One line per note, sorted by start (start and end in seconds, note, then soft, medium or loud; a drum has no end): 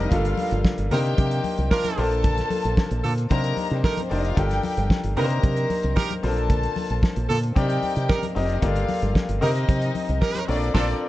0.00 0.12 G3 loud
0.00 0.13 A#3 medium
0.00 0.14 C4 medium
0.00 0.12 D4 medium
0.00 0.14 D#4 medium
0.00 0.11 D#4 medium
0.00 0.14 A#4 loud
0.00 0.11 D#5 loud
0.10 0.33 G1 loud
0.10 0.77 G3 medium
0.10 0.18 A3 medium
0.10 0.78 D4 medium
0.10 0.63 F4 loud
0.10 0.78 F4 medium
0.10 0.78 A4 loud
0.10 0.63 F5 loud
0.10 kick loud
0.10 closed hi-hat medium
0.10 muted conga soft
0.10 low conga medium
0.18 0.81 A#3 medium
0.25 closed hi-hat medium
0.37 open hi-hat medium
0.37 muted conga soft
0.37 high conga medium
0.51 0.62 G1 loud
0.51 closed hi-hat soft
0.64 kick loud
0.64 snare loud
0.64 muted conga soft
0.78 0.89 G1 loud
0.78 closed hi-hat medium
0.91 1.13 C3 loud
0.91 1.77 A#3 loud
0.91 1.77 D4 medium
0.91 1.00 D#4 medium
0.91 1.77 D#4 medium
0.91 1.00 G4 medium
0.91 1.70 G4 loud
0.91 1.77 G4 medium
0.91 1.00 A#4 loud
0.91 1.77 C5 loud
0.91 1.70 G5 loud
0.91 open hi-hat medium
0.91 muted conga soft
0.91 low conga medium
1.05 closed hi-hat soft
1.18 1.39 C3 loud
1.18 kick loud
1.18 closed hi-hat medium
1.18 high conga medium
1.31 closed hi-hat medium
1.44 open hi-hat medium
1.44 muted conga soft
1.44 high conga medium
1.58 1.69 C2 medium
1.58 closed hi-hat soft
1.71 2.05 D4 loud
1.71 2.05 F4 loud
1.71 2.05 A#4 loud
1.71 kick loud
1.71 snare loud
1.84 closed hi-hat medium
1.84 high conga medium
1.97 2.40 A#1 loud
1.97 2.83 A#3 medium
1.97 2.83 D4 medium
1.97 2.83 F4 medium
1.97 3.02 A4 loud
1.97 2.83 A4 medium
1.97 2.84 C5 loud
1.97 3.02 A5 loud
1.97 open hi-hat medium
1.97 muted conga soft
2.12 closed hi-hat soft
2.24 kick loud
2.24 closed hi-hat medium
2.24 muted conga soft
2.24 low conga medium
2.38 snare soft
2.38 closed hi-hat soft
2.50 open hi-hat medium
2.50 high conga medium
2.64 2.75 A#1 medium
2.64 closed hi-hat soft
2.77 kick loud
2.77 snare loud
2.77 muted conga soft
2.91 3.02 A#1 loud
2.91 closed hi-hat soft
3.04 3.26 A#2 loud
3.04 3.13 D4 medium
3.04 3.13 F4 medium
3.04 3.13 A4 medium
3.04 open hi-hat medium
3.04 low conga medium
3.18 closed hi-hat soft
3.30 3.52 C3 loud
3.30 3.94 A#3 medium
3.30 3.95 D4 medium
3.30 3.95 D#4 medium
3.30 3.95 G4 medium
3.30 3.69 A#4 loud
3.30 3.95 C5 loud
3.30 3.69 A#5 loud
3.30 kick loud
3.30 closed hi-hat medium
3.30 muted conga soft
3.30 high conga medium
3.44 closed hi-hat medium
3.57 open hi-hat medium
3.57 high conga medium
3.71 3.82 C3 medium
3.71 closed hi-hat soft
3.75 3.84 G3 medium
3.75 3.84 G4 medium
3.84 3.93 A3 medium
3.84 4.01 D#4 loud
3.84 4.01 G4 loud
3.84 3.93 A4 medium
3.84 4.01 A#4 loud
3.84 kick loud
3.84 snare loud
3.93 4.02 A#3 medium
3.93 4.02 A#4 medium
3.97 closed hi-hat medium
3.97 high conga medium
4.02 4.11 C4 medium
4.02 4.11 C5 medium
4.10 4.32 F1 loud
4.10 4.27 A#3 medium
4.10 4.27 D4 medium
4.10 4.20 D4 medium
4.10 4.27 D#4 medium
4.10 4.27 G4 medium
4.10 4.28 C5 medium
4.10 4.20 D5 medium
4.10 open hi-hat medium
4.10 muted conga soft
4.20 4.29 D#4 medium
4.20 4.29 D#5 medium
4.25 4.37 F5 loud
4.25 closed hi-hat soft
4.29 4.37 F4 medium
4.37 4.58 G1 loud
4.37 5.03 D4 medium
4.37 5.03 F4 medium
4.37 4.89 G4 loud
4.37 5.03 G4 medium
4.37 5.03 A4 medium
4.37 5.03 A#4 medium
4.37 4.90 G5 loud
4.37 kick loud
4.37 closed hi-hat medium
4.37 muted conga soft
4.37 low conga medium
4.51 snare soft
4.51 closed hi-hat medium
4.63 open hi-hat medium
4.63 high conga loud
4.77 4.88 G1 loud
4.77 closed hi-hat soft
4.90 kick loud
4.90 snare loud
5.04 5.14 G1 medium
5.04 closed hi-hat medium
5.16 5.38 C3 loud
5.16 6.02 A#3 loud
5.16 6.02 D4 medium
5.16 5.25 D#4 medium
5.16 6.02 D#4 medium
5.16 5.25 G4 medium
5.16 6.02 G4 medium
5.16 5.95 A#4 loud
5.16 5.25 A#4 loud
5.16 5.24 B4 medium
5.16 5.95 A#5 loud
5.16 open hi-hat medium
5.16 low conga medium
5.24 6.06 C5 loud
5.30 closed hi-hat medium
5.44 5.65 C3 medium
5.44 kick loud
5.44 closed hi-hat medium
5.44 muted conga soft
5.44 high conga medium
5.56 closed hi-hat medium
5.70 open hi-hat medium
5.70 muted conga soft
5.70 high conga medium
5.83 5.94 C2 medium
5.83 closed hi-hat soft
5.96 6.13 D#4 loud
5.96 6.13 G4 loud
5.96 6.13 A#4 loud
5.96 kick loud
5.96 snare loud
5.96 muted conga soft
6.10 closed hi-hat medium
6.10 high conga medium
6.23 6.66 A#1 loud
6.23 7.08 A#3 medium
6.23 6.30 C4 medium
6.23 7.08 F4 medium
6.23 7.27 A4 medium
6.23 7.09 A4 medium
6.23 7.09 C5 medium
6.23 7.27 A5 loud
6.23 open hi-hat medium
6.30 7.11 D4 medium
6.37 closed hi-hat soft
6.50 kick loud
6.50 closed hi-hat medium
6.50 muted conga soft
6.50 low conga medium
6.63 closed hi-hat medium
6.76 open hi-hat medium
6.76 high conga medium
6.90 7.01 A#1 medium
6.90 closed hi-hat soft
7.03 kick loud
7.03 snare loud
7.03 muted conga soft
7.16 7.27 A#1 loud
7.16 closed hi-hat medium
7.29 7.51 A#2 loud
7.29 7.38 D4 medium
7.29 7.38 F4 medium
7.29 7.38 A4 loud
7.29 open hi-hat medium
7.29 muted conga soft
7.29 low conga medium
7.43 closed hi-hat medium
7.55 7.77 C3 loud
7.55 8.20 C4 medium
7.55 7.62 D4 medium
7.55 8.20 G4 medium
7.55 8.20 G4 loud
7.55 8.20 A#4 medium
7.55 8.20 D5 loud
7.55 8.21 G5 loud
7.55 kick loud
7.55 closed hi-hat medium
7.55 muted conga soft
7.55 high conga medium
7.62 8.23 D#4 medium
7.70 closed hi-hat medium
7.83 open hi-hat medium
7.83 high conga medium
7.96 8.07 C3 medium
7.96 closed hi-hat soft
8.09 8.26 D#4 loud
8.09 8.26 G4 loud
8.09 8.26 A#4 loud
8.09 kick loud
8.09 snare loud
8.09 muted conga soft
8.23 closed hi-hat medium
8.23 high conga medium
8.27 8.36 A#3 medium
8.27 8.36 A#4 medium
8.35 8.57 F1 loud
8.35 8.52 C4 medium
8.35 8.45 C4 medium
8.35 8.52 D#4 medium
8.35 8.52 G4 medium
8.35 8.52 A#4 medium
8.35 8.45 C5 medium
8.35 8.52 D#5 loud
8.35 open hi-hat medium
8.35 muted conga soft
8.45 8.54 D4 medium
8.45 8.54 D5 medium
8.50 closed hi-hat soft
8.54 8.63 D#4 medium
8.54 8.63 D#5 medium
8.62 8.84 G1 loud
8.62 9.28 A#3 loud
8.62 9.14 F4 medium
8.62 9.28 F4 medium
8.62 9.28 G4 medium
8.62 9.28 A4 medium
8.62 9.29 D5 loud
8.62 9.14 F5 loud
8.62 kick loud
8.62 closed hi-hat medium
8.62 muted conga soft
8.62 low conga medium
8.76 closed hi-hat medium
8.88 open hi-hat medium
8.88 high conga loud
9.02 9.13 G1 loud
9.02 closed hi-hat soft
9.15 kick loud
9.15 snare loud
9.29 9.39 G1 medium
9.29 closed hi-hat medium
9.41 9.63 C3 loud
9.41 10.27 C4 loud
9.41 9.48 D4 medium
9.41 10.20 D#4 loud
9.41 9.51 D#4 loud
9.41 10.27 G4 medium
9.41 9.51 G4 medium
9.41 10.27 A#4 medium
9.41 9.51 A#4 loud
9.41 10.20 D#5 loud
9.41 10.27 D#5 loud
9.41 open hi-hat medium
9.41 muted conga soft
9.41 low conga medium
9.48 10.30 D#4 medium
9.56 closed hi-hat medium
9.69 9.90 C3 loud
9.69 kick loud
9.69 closed hi-hat medium
9.69 muted conga soft
9.69 high conga medium
9.82 closed hi-hat medium
9.95 open hi-hat medium
9.95 high conga medium
10.09 10.19 C2 medium
10.09 closed hi-hat soft
10.22 10.44 D#4 loud
10.22 10.44 G4 loud
10.22 10.44 A#4 loud
10.22 kick loud
10.22 snare loud
10.35 closed hi-hat medium
10.35 high conga medium
10.48 10.70 A#1 loud
10.48 10.72 C4 medium
10.48 10.74 D4 loud
10.48 10.73 F4 medium
10.48 10.73 A4 medium
10.48 10.74 A#4 medium
10.48 10.55 C#5 medium
10.48 10.73 D5 loud
10.48 open hi-hat medium
10.48 muted conga soft
10.56 10.79 D5 loud
10.62 closed hi-hat soft
10.74 10.93 A#1 loud
10.74 10.92 C4 loud
10.74 10.88 D4 loud
10.74 10.93 D4 loud
10.74 10.93 F4 loud
10.74 10.88 F4 loud
10.74 10.88 A4 loud
10.74 10.93 A4 loud
10.74 10.93 A#4 loud
10.74 10.93 D5 loud
10.74 kick loud
10.74 snare loud
10.74 crash medium
10.82 10.97 D5 loud